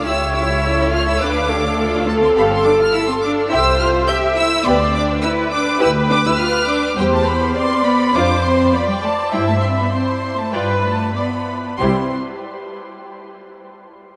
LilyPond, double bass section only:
\new Staff \with { instrumentName = "Double bass section" } { \clef bass \time 4/4 \key c \major \tempo 4 = 102 cis,2 d,2 | g,,4 r4 c,4 r4 | d,4 r4 d,4 r4 | e,4 r4 f,4 r4 |
g,4 r4 g,4 r4 | c,8 r2. r8 | }